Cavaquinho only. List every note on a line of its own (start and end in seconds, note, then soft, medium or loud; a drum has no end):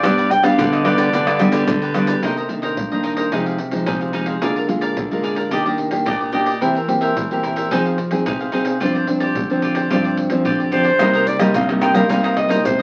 0.03 0.16 D4 soft
0.03 0.16 G4 medium
0.03 0.16 B4 medium
0.03 0.16 D5 medium
0.17 0.29 G4 medium
0.17 0.29 B4 medium
0.17 0.30 D5 medium
0.30 muted cavaquinho stroke soft
0.43 0.57 G4 medium
0.43 0.57 B4 medium
0.43 0.56 D5 medium
0.58 0.83 D4 medium
0.58 0.84 G4 medium
0.58 0.85 B4 medium
0.58 0.85 D5 medium
0.84 0.97 D4 medium
0.84 0.98 G4 medium
0.84 0.97 B4 medium
0.84 0.96 D5 medium
0.98 1.12 G4 medium
0.98 1.11 B4 medium
0.98 1.11 D5 medium
1.13 1.26 D4 medium
1.13 1.26 G4 soft
1.13 1.26 B4 medium
1.13 1.26 D5 medium
1.27 1.39 G4 medium
1.27 1.39 B4 medium
1.27 1.40 D5 medium
1.40 muted cavaquinho stroke soft
1.52 1.80 G4 medium
1.52 1.80 B4 medium
1.52 1.79 D5 medium
1.82 1.93 G4 medium
1.82 1.94 B4 medium
1.82 1.94 D5 medium
1.94 2.07 D4 soft
1.94 2.07 G4 medium
1.94 2.07 B4 soft
1.94 2.06 D5 soft
2.07 2.21 G4 medium
2.07 2.21 B4 medium
2.07 2.20 D5 medium
2.23 2.35 D#4 medium
2.23 2.36 A#4 medium
2.23 2.36 C5 medium
2.23 2.36 D#5 medium
2.37 2.49 A#4 soft
2.37 2.49 C5 soft
2.37 2.49 D#5 soft
2.50 muted cavaquinho stroke soft
2.62 2.90 A#4 soft
2.62 2.90 C5 soft
2.62 2.89 D#5 medium
2.92 3.03 A#4 soft
2.92 3.03 C5 soft
2.92 3.04 D#5 soft
3.03 3.16 D#4 soft
3.03 3.17 A#4 soft
3.03 3.16 C5 soft
3.03 3.15 D#5 soft
3.16 3.31 A#4 soft
3.16 3.30 C5 medium
3.16 3.30 D#5 medium
3.32 3.44 D#4 medium
3.32 3.45 G#4 medium
3.32 3.45 C5 medium
3.32 3.45 F5 medium
3.46 3.58 G#4 soft
3.46 3.58 C5 soft
3.46 3.58 F5 soft
3.59 muted cavaquinho stroke soft
3.86 3.99 D#4 medium
3.86 3.99 G#4 medium
3.86 4.00 C5 medium
3.86 4.00 F5 medium
4.01 4.13 G#4 soft
4.01 4.13 C5 soft
4.01 4.13 F5 soft
4.13 4.26 D#4 medium
4.13 4.27 G#4 medium
4.13 4.26 C5 medium
4.13 4.25 F5 medium
4.26 4.40 G#4 soft
4.26 4.40 C5 soft
4.26 4.40 F5 soft
4.42 4.54 G#4 medium
4.42 4.55 A#4 medium
4.42 4.55 D5 medium
4.42 4.55 F5 medium
4.56 4.68 A#4 soft
4.56 4.68 D5 soft
4.56 4.68 F5 soft
4.69 muted cavaquinho stroke soft
4.81 5.09 A#4 soft
4.81 5.08 D5 medium
4.81 5.09 F5 medium
5.11 5.23 A#4 soft
5.11 5.23 D5 soft
5.11 5.23 F5 soft
5.23 5.36 G#4 soft
5.23 5.36 A#4 soft
5.23 5.34 D5 soft
5.23 5.35 F5 soft
5.35 5.50 A#4 soft
5.35 5.49 D5 medium
5.35 5.50 F5 medium
5.51 5.64 D4 medium
5.51 5.64 G4 medium
5.51 5.64 D5 medium
5.51 5.65 D#5 medium
5.65 5.78 G4 soft
5.65 5.78 D5 soft
5.65 5.78 D#5 soft
5.79 muted cavaquinho stroke soft
6.05 6.19 D4 medium
6.05 6.19 G4 medium
6.05 6.19 D5 medium
6.05 6.19 D#5 medium
6.20 6.32 G4 soft
6.20 6.33 D5 soft
6.20 6.32 D#5 soft
6.32 6.46 D4 medium
6.32 6.46 G4 medium
6.32 6.44 D5 medium
6.32 6.45 D#5 medium
6.45 6.60 G4 soft
6.45 6.59 D5 soft
6.45 6.60 D#5 soft
6.61 6.74 E4 medium
6.61 6.74 A#4 medium
6.61 6.74 C5 medium
6.61 6.74 E5 medium
6.75 6.87 A#4 soft
6.75 6.88 C5 soft
6.75 6.88 E5 medium
6.88 muted cavaquinho stroke soft
7.01 7.29 A#4 soft
7.01 7.29 C5 medium
7.01 7.28 E5 medium
7.31 7.43 A#4 soft
7.31 7.43 C5 soft
7.31 7.43 E5 soft
7.43 7.56 E4 soft
7.43 7.56 A#4 soft
7.43 7.55 C5 soft
7.43 7.55 E5 soft
7.56 7.70 A#4 soft
7.56 7.70 C5 medium
7.56 7.69 E5 medium
7.71 7.84 D#4 medium
7.71 7.84 G#4 medium
7.71 7.84 C5 medium
7.71 7.84 F5 medium
7.86 7.98 G#4 soft
7.86 7.98 C5 soft
7.86 7.98 F5 soft
7.98 muted cavaquinho stroke soft
8.26 8.39 D#4 medium
8.26 8.39 G#4 medium
8.26 8.39 C5 medium
8.26 8.39 F5 medium
8.40 8.52 G#4 soft
8.40 8.52 C5 soft
8.40 8.53 F5 soft
8.52 8.66 D#4 medium
8.52 8.66 G#4 medium
8.52 8.65 C5 medium
8.52 8.64 F5 medium
8.66 8.80 G#4 soft
8.66 8.80 C5 soft
8.66 8.79 F5 soft
8.80 8.93 F4 medium
8.80 8.94 G4 medium
8.80 8.94 C5 medium
8.80 8.94 D5 medium
8.95 9.07 G4 soft
8.95 9.07 C5 soft
8.95 9.08 D5 soft
9.08 muted cavaquinho stroke soft
9.20 9.49 G4 soft
9.20 9.48 C5 medium
9.20 9.48 D5 medium
9.50 9.62 G4 soft
9.50 9.62 C5 soft
9.50 9.63 D5 soft
9.62 9.76 F4 soft
9.62 9.75 G4 soft
9.62 9.75 C5 medium
9.62 9.73 D5 soft
9.75 9.90 G4 soft
9.75 9.89 C5 medium
9.75 9.89 D5 medium
9.90 10.03 F4 medium
9.90 10.04 G4 medium
9.90 10.04 C5 medium
9.90 10.03 D5 medium
10.04 10.16 G4 soft
10.04 10.17 C5 soft
10.04 10.17 D5 soft
10.17 muted cavaquinho stroke soft
10.45 10.58 F4 medium
10.45 10.58 G4 medium
10.45 10.58 C5 medium
10.45 10.58 D5 medium
10.60 10.71 G4 soft
10.60 10.71 C5 soft
10.60 10.72 D5 soft
10.71 10.85 F4 medium
10.71 10.85 G4 medium
10.71 10.84 C5 medium
10.71 10.83 D5 medium
10.84 10.99 G4 soft
10.84 10.99 C5 soft
10.84 10.98 D5 soft
11.00 11.13 D#4 soft
11.00 11.13 A#4 soft
11.00 11.13 C5 soft
11.00 11.12 D#5 soft
11.13 11.26 A#4 medium
11.13 11.26 C5 medium
11.13 11.26 D#5 medium
11.26 muted cavaquinho stroke soft
11.39 11.54 A#4 medium
11.39 11.54 C5 medium
11.39 11.53 D#5 medium
11.55 11.80 D#4 medium
11.55 11.81 A#4 soft
11.55 11.81 C5 medium
11.55 11.82 D#5 medium
11.81 11.95 D#4 medium
11.81 11.95 A#4 medium
11.81 11.94 C5 medium
11.81 11.93 D#5 medium
11.94 12.09 A#4 medium
11.94 12.09 C5 medium
11.94 12.08 D#5 medium
12.09 12.23 D#4 soft
12.09 12.23 A#4 medium
12.09 12.23 C5 medium
12.09 12.22 D#5 medium
12.23 12.35 A#4 medium
12.23 12.36 C5 medium
12.23 12.36 D#5 medium
12.37 muted cavaquinho stroke soft
12.48 12.77 A#4 medium
12.48 12.77 C5 medium
12.48 12.76 D#5 medium
12.79 12.82 D#5 medium